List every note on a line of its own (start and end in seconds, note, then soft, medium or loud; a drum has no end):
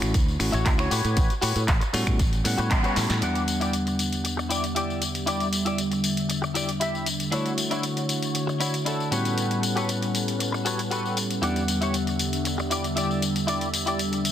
0.00 0.12 A1 medium
0.00 0.13 A3 medium
0.00 0.13 C#4 medium
0.00 0.13 E4 medium
0.00 0.13 F#4 medium
0.00 finger snap medium
0.00 closed hi-hat medium
0.00 tambourine soft
0.14 0.36 D2 medium
0.14 kick loud
0.14 closed hi-hat medium
0.14 tambourine soft
0.28 tambourine soft
0.39 0.51 A1 medium
0.39 0.90 A3 medium
0.39 0.90 C#4 medium
0.39 0.90 E4 medium
0.39 0.90 F#4 medium
0.39 finger snap medium
0.39 open hi-hat loud
0.39 tambourine medium
0.52 0.64 A1 loud
0.52 0.65 E4 loud
0.52 0.66 F#4 loud
0.52 0.66 C#5 loud
0.52 closed hi-hat medium
0.52 tambourine soft
0.66 0.87 D2 medium
0.66 kick loud
0.66 clap loud
0.66 closed hi-hat medium
0.66 tambourine soft
0.78 0.90 E4 medium
0.78 0.89 F#4 medium
0.78 0.91 C#5 loud
0.78 finger snap medium
0.78 tambourine soft
0.90 1.02 A2 medium
0.90 1.32 F#4 medium
0.90 1.33 G4 medium
0.90 1.33 B4 medium
0.90 1.33 C#5 loud
0.90 open hi-hat medium
0.90 tambourine medium
1.05 1.15 A2 medium
1.05 closed hi-hat medium
1.05 tambourine soft
1.17 1.28 A1 loud
1.17 kick loud
1.17 closed hi-hat medium
1.17 tambourine soft
1.30 closed hi-hat soft
1.30 tambourine soft
1.41 1.54 A2 medium
1.41 1.62 F#4 loud
1.41 1.62 G4 loud
1.41 1.62 B4 loud
1.41 1.63 C#5 loud
1.41 open hi-hat loud
1.41 tambourine medium
1.56 1.66 A2 medium
1.56 closed hi-hat medium
1.56 tambourine soft
1.68 1.79 A1 medium
1.68 kick loud
1.68 clap loud
1.68 closed hi-hat medium
1.68 tambourine soft
1.80 muted clean electric guitar stroke medium
1.80 closed hi-hat soft
1.80 tambourine soft
1.93 2.05 A2 medium
1.93 2.18 G3 medium
1.93 2.18 B3 medium
1.93 2.18 C#4 medium
1.93 2.18 F#4 loud
1.93 muted clean electric guitar stroke soft
1.93 open hi-hat medium
1.93 tambourine medium
2.07 2.17 A2 medium
2.07 finger snap medium
2.07 kick medium
2.07 closed hi-hat medium
2.07 tambourine soft
2.19 2.41 A1 medium
2.19 kick loud
2.19 closed hi-hat medium
2.19 tambourine soft
2.33 closed hi-hat soft
2.33 tambourine soft
2.44 2.56 A2 loud
2.44 3.20 G3 medium
2.44 3.21 B3 medium
2.44 3.21 C#4 medium
2.44 3.21 F#5 medium
2.44 open hi-hat loud
2.44 tambourine medium
2.58 2.69 A2 loud
2.58 2.70 F#4 loud
2.58 2.71 G4 loud
2.58 2.71 B4 loud
2.58 2.71 C#5 loud
2.58 closed hi-hat soft
2.58 tambourine soft
2.71 2.82 A1 medium
2.71 kick loud
2.71 clap loud
2.71 closed hi-hat medium
2.71 tambourine soft
2.83 3.16 F#4 medium
2.83 3.16 G4 medium
2.83 3.16 B4 medium
2.83 3.17 C#5 loud
2.83 closed hi-hat soft
2.83 tambourine soft
2.96 3.08 A2 medium
2.96 snare medium
2.96 open hi-hat medium
2.96 tambourine medium
3.10 3.20 A2 medium
3.10 snare medium
3.10 closed hi-hat medium
3.10 tambourine soft
3.21 7.29 E2 medium
3.21 9.08 D3 medium
3.21 7.29 G3 medium
3.21 7.28 G3 medium
3.21 7.30 B3 medium
3.21 7.30 D4 medium
3.21 3.41 E4 medium
3.21 3.42 G4 medium
3.21 3.42 D5 loud
3.21 9.08 E5 medium
3.21 7.30 F#5 medium
3.21 closed hi-hat medium
3.21 tambourine soft
3.35 closed hi-hat soft
3.35 tambourine soft
3.48 closed hi-hat medium
3.48 tambourine medium
3.60 3.73 E4 medium
3.60 3.74 G4 medium
3.60 3.74 D5 medium
3.60 closed hi-hat soft
3.60 tambourine soft
3.73 closed hi-hat medium
3.73 tambourine soft
3.86 muted clean electric guitar stroke soft
3.86 closed hi-hat soft
3.86 tambourine soft
3.99 closed hi-hat medium
3.99 tambourine medium
4.13 closed hi-hat soft
4.13 tambourine soft
4.24 muted clean electric guitar stroke soft
4.24 closed hi-hat medium
4.24 tambourine soft
4.37 muted clean electric guitar stroke loud
4.37 tambourine soft
4.49 4.63 E4 medium
4.49 4.64 G4 medium
4.49 4.64 D5 medium
4.49 closed hi-hat medium
4.49 tambourine medium
4.64 closed hi-hat soft
4.64 tambourine soft
4.75 5.01 E4 medium
4.75 5.02 G4 medium
4.75 5.02 D5 medium
4.75 closed hi-hat medium
4.75 tambourine soft
4.90 tambourine soft
5.02 closed hi-hat medium
5.02 tambourine medium
5.15 closed hi-hat soft
5.15 tambourine soft
5.26 5.46 E4 medium
5.26 5.47 G4 medium
5.26 5.47 D5 loud
5.26 closed hi-hat medium
5.26 tambourine soft
5.40 closed hi-hat soft
5.40 tambourine soft
5.53 closed hi-hat medium
5.53 tambourine medium
5.65 5.78 E4 medium
5.65 5.79 G4 medium
5.65 5.79 D5 medium
5.65 closed hi-hat soft
5.65 tambourine soft
5.78 closed hi-hat medium
5.78 tambourine soft
5.91 muted clean electric guitar stroke soft
5.91 closed hi-hat soft
5.91 tambourine soft
6.04 closed hi-hat medium
6.04 tambourine medium
6.17 closed hi-hat soft
6.17 tambourine soft
6.29 muted clean electric guitar stroke soft
6.29 closed hi-hat medium
6.29 tambourine soft
6.42 muted clean electric guitar stroke loud
6.42 tambourine soft
6.54 6.68 E4 medium
6.54 6.69 G4 medium
6.54 6.69 D5 medium
6.54 closed hi-hat medium
6.54 tambourine medium
6.69 closed hi-hat soft
6.69 tambourine soft
6.80 7.06 E4 medium
6.80 7.07 G4 medium
6.80 7.07 E5 medium
6.80 closed hi-hat medium
6.80 tambourine soft
6.95 tambourine soft
7.06 closed hi-hat medium
7.06 tambourine medium
7.20 closed hi-hat soft
7.20 tambourine soft
7.31 9.08 D3 medium
7.31 9.09 A3 medium
7.31 7.51 D4 loud
7.31 7.52 E4 medium
7.31 9.09 E4 medium
7.31 9.10 F#4 medium
7.31 7.52 F#4 medium
7.31 9.09 F#4 medium
7.31 9.09 C#5 medium
7.31 9.10 C#5 medium
7.31 7.52 C#5 loud
7.31 closed hi-hat medium
7.31 tambourine soft
7.46 closed hi-hat soft
7.46 tambourine soft
7.58 closed hi-hat medium
7.58 tambourine medium
7.71 7.83 D4 medium
7.71 7.84 E4 medium
7.71 7.84 F#4 medium
7.71 7.84 C#5 medium
7.71 closed hi-hat soft
7.71 tambourine soft
7.83 closed hi-hat medium
7.83 tambourine soft
7.96 muted clean electric guitar stroke soft
7.96 closed hi-hat soft
7.96 tambourine soft
8.09 closed hi-hat medium
8.09 tambourine medium
8.22 closed hi-hat soft
8.22 tambourine soft
8.34 muted clean electric guitar stroke soft
8.34 closed hi-hat medium
8.34 tambourine soft
8.47 muted clean electric guitar stroke loud
8.47 tambourine soft
8.60 8.74 D4 medium
8.60 8.74 E4 medium
8.60 8.74 F#4 medium
8.60 8.74 C#5 medium
8.60 closed hi-hat medium
8.60 tambourine medium
8.74 closed hi-hat soft
8.74 tambourine soft
8.85 9.11 D4 medium
8.85 9.12 E4 medium
8.85 9.10 F#4 medium
8.85 9.11 A4 medium
8.85 closed hi-hat medium
8.85 tambourine soft
9.00 tambourine soft
9.11 11.39 A2 medium
9.11 11.40 G3 medium
9.11 14.32 G3 medium
9.11 11.40 B3 medium
9.11 11.40 C#4 medium
9.11 11.40 E4 medium
9.11 9.63 F#4 medium
9.11 9.63 G4 medium
9.11 9.63 A4 medium
9.11 11.40 A4 medium
9.11 11.40 B4 medium
9.11 9.63 B4 medium
9.11 9.64 C#5 medium
9.11 11.40 F#5 medium
9.11 closed hi-hat medium
9.11 tambourine medium
9.25 closed hi-hat soft
9.25 tambourine soft
9.38 closed hi-hat medium
9.38 tambourine soft
9.51 closed hi-hat soft
9.51 tambourine soft
9.63 closed hi-hat medium
9.63 tambourine medium
9.75 9.88 F#4 medium
9.75 9.89 G4 medium
9.75 9.89 A4 medium
9.75 9.89 B4 medium
9.75 9.89 C#5 medium
9.75 closed hi-hat soft
9.75 tambourine soft
9.89 closed hi-hat medium
9.89 tambourine soft
10.01 muted clean electric guitar stroke soft
10.01 closed hi-hat soft
10.01 tambourine soft
10.15 closed hi-hat medium
10.15 tambourine medium
10.28 closed hi-hat soft
10.28 tambourine soft
10.39 muted clean electric guitar stroke soft
10.39 closed hi-hat medium
10.39 tambourine soft
10.52 muted clean electric guitar stroke loud
10.52 tambourine soft
10.65 10.79 F#4 medium
10.65 10.79 G4 medium
10.65 10.79 A4 medium
10.65 10.79 B4 medium
10.65 10.80 C#5 medium
10.65 closed hi-hat medium
10.65 tambourine medium
10.79 closed hi-hat soft
10.79 tambourine soft
10.91 11.17 F#4 medium
10.91 11.17 G4 medium
10.91 11.17 A4 medium
10.91 11.17 B4 medium
10.91 11.18 C#5 medium
10.91 closed hi-hat medium
10.91 tambourine soft
11.05 tambourine soft
11.17 closed hi-hat medium
11.17 tambourine medium
11.30 closed hi-hat soft
11.30 tambourine soft
11.42 14.32 E2 medium
11.42 14.32 D3 medium
11.42 14.32 G3 medium
11.42 14.32 B3 medium
11.42 14.32 D4 medium
11.42 11.62 E4 loud
11.42 11.62 G4 medium
11.42 11.63 D5 loud
11.42 14.32 E5 medium
11.42 14.32 F#5 medium
11.42 closed hi-hat medium
11.42 tambourine soft
11.56 closed hi-hat soft
11.56 tambourine soft
11.68 closed hi-hat medium
11.68 tambourine medium
11.81 11.94 E4 medium
11.81 11.94 G4 medium
11.81 11.95 C#5 medium
11.81 closed hi-hat soft
11.81 tambourine soft
11.94 closed hi-hat medium
11.94 tambourine soft
12.07 muted clean electric guitar stroke soft
12.07 closed hi-hat soft
12.07 tambourine soft
12.19 closed hi-hat medium
12.19 tambourine medium
12.33 closed hi-hat soft
12.33 tambourine soft
12.45 muted clean electric guitar stroke soft
12.45 closed hi-hat medium
12.45 tambourine soft
12.58 muted clean electric guitar stroke loud
12.58 tambourine soft
12.70 12.84 E4 medium
12.70 12.84 G4 medium
12.70 12.85 D5 medium
12.70 closed hi-hat medium
12.70 tambourine medium
12.84 closed hi-hat soft
12.84 tambourine soft
12.96 13.22 E4 medium
12.96 13.22 G4 medium
12.96 13.23 D5 medium
12.96 closed hi-hat medium
12.96 tambourine soft
13.11 tambourine soft
13.22 closed hi-hat medium
13.22 tambourine medium
13.36 closed hi-hat soft
13.36 tambourine soft
13.47 13.67 E4 loud
13.47 13.67 G4 medium
13.47 13.68 D5 loud
13.47 closed hi-hat medium
13.47 tambourine soft
13.61 closed hi-hat soft
13.61 tambourine soft
13.74 closed hi-hat medium
13.74 tambourine medium
13.86 13.99 E4 medium
13.86 13.99 G4 medium
13.86 14.00 D5 medium
13.86 closed hi-hat soft
13.86 tambourine soft
13.99 closed hi-hat medium
13.99 tambourine soft
14.12 muted clean electric guitar stroke soft
14.12 closed hi-hat soft
14.12 tambourine soft
14.25 closed hi-hat medium
14.25 tambourine medium